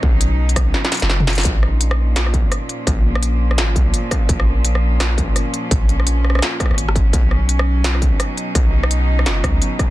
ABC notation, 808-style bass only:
X:1
M:4/4
L:1/16
Q:"Swing 16ths" 1/4=169
K:Bbphr
V:1 name="808-style bass" clef=bass
=B,,,8 z3 ^F,,,4- F,,, | B,,,8- B,,,2 B,,, z4 z | B,,,8 A,,,2 C,,2 z4 | B,,,8- B,,,2 B,,, z4 z |
B,,,8 z3 A,,,4- A,,, | =B,,,8- B,,,2 B,,, z4 z | =B,,,8 ^F,,,2 D,,2 z4 |]